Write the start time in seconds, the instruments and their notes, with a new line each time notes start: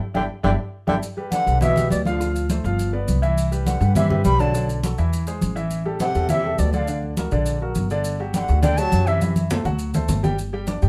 0.14 upright bass G1, tenor saxophone D3, grand piano D4 E4 G4, bansuri G5, high conga
0.43 upright bass G1, tenor saxophone D3, grand piano D4 E4 G4, bansuri G5, high conga
0.87 upright bass G1, tenor saxophone D3, grand piano D4 E4 G4, bansuri G5, high conga
1.02 high conga, maracas
1.17 grand piano G3 G4 B4, high conga
1.31 tenor saxophone D3, bansuri F#5, high conga, maracas
1.46 upright bass B1, grand piano G3 G4 B4, high conga, maracas
1.61 tenor saxophone B2, grand piano E3 E4 E5, bansuri E5, high conga, low conga, maracas
1.76 grand piano G3 G4 B4, high conga, low conga, maracas
1.90 upright bass D2, tenor saxophone B2, bansuri D5, high conga, maracas
2.04 tenor saxophone D3, grand piano F3 F4 F5, bansuri F5, high conga, maracas
2.20 grand piano F3 F4 F5, high conga, maracas
2.35 high conga, maracas
2.50 grand piano A3 A4 C5, high conga, maracas
2.64 upright bass G1, grand piano F3 F4 F5, maracas
2.79 high conga, maracas
2.93 grand piano B3 B4 D5, high conga
3.08 upright bass C2, high conga, maracas
3.22 grand piano E3 E4 E5, high conga, maracas
3.37 high conga, maracas
3.52 grand piano G3 G4 B4, high conga, maracas
3.66 tenor saxophone D3, bansuri F#5, high conga, maracas
3.81 upright bass G2, grand piano G3 G4 B4, high conga, maracas
3.95 tenor saxophone C3, grand piano E3 E4 E5, bansuri E5, high conga, low conga, maracas
4.10 grand piano G3 G4 B4, high conga, low conga
4.25 upright bass B1, tenor saxophone G3, bansuri B5, high conga, maracas
4.39 grand piano D3 D4 D5, tenor saxophone F#3, bansuri A5, high conga, maracas
4.54 grand piano D3 D4 D5, high conga, maracas
4.69 high conga, maracas
4.83 grand piano F#3 F#4 A4, high conga, maracas
4.98 upright bass E2, grand piano E3 E4 E5, high conga, maracas
5.12 high conga, maracas
5.27 grand piano G#3 G#4 C5, high conga, maracas
5.41 upright bass A1, high conga, maracas
5.55 grand piano E3 E4 E5, high conga, maracas
5.71 high conga, maracas
5.85 grand piano G3 G4 A4, high conga
6.00 tenor saxophone C3, bansuri F#5, high conga, maracas
6.15 upright bass E2, grand piano G3 G4 A4, high conga, maracas
6.29 tenor saxophone C3, grand piano E3 E4 E5, bansuri E5, high conga, low conga, maracas
6.44 grand piano G3 G4 A4, high conga
6.59 upright bass D2, tenor saxophone B2, bansuri D5, high conga, maracas
6.73 grand piano D3 D4 D5, tenor saxophone D3, bansuri F#5, high conga, maracas
6.79 bansuri F5
6.88 grand piano D3 D4 D5, high conga, maracas
7.03 high conga
7.17 grand piano F#3 F#4 A#4, high conga, maracas
7.31 upright bass A#1, grand piano D3 D4 D5, high conga, maracas
7.46 high conga, maracas
7.61 grand piano F#3 F#4 A#4, high conga
7.75 upright bass G1, high conga, maracas
7.90 grand piano D3 D4 D5, high conga, maracas
8.04 high conga, maracas
8.19 grand piano F#3 F#4 G4, high conga
8.34 tenor saxophone D3, bansuri G5, high conga, maracas
8.39 bansuri F#5
8.48 upright bass D2, grand piano F#3 F#4 G4, high conga, maracas
8.62 grand piano D3 D4 D5, tenor saxophone D3, bansuri G5, high conga, low conga, maracas
8.78 grand piano F#3 F#4 G4, tenor saxophone F#3, bansuri A5, high conga, maracas
8.92 upright bass F#2, high conga, maracas
9.07 tenor saxophone C3, grand piano E3 E4 E5, bansuri E5, maracas
9.21 grand piano E3 E4 E5, high conga, maracas
9.36 high conga, maracas
9.50 grand piano A3 A4 C5, low conga, maracas
9.65 upright bass D2, grand piano F#3 F#4 F#5, low conga, maracas
9.79 maracas
9.94 grand piano A3 A4 C5, low conga, maracas
10.08 upright bass G1, low conga, maracas
10.23 grand piano G3 G4 G5, low conga, maracas
10.38 high conga, maracas
10.53 grand piano G3 G4 G5, high conga
10.67 grand piano D4 D5 D6, high conga, maracas
10.82 upright bass G2, grand piano G3 G4 G5, high conga, maracas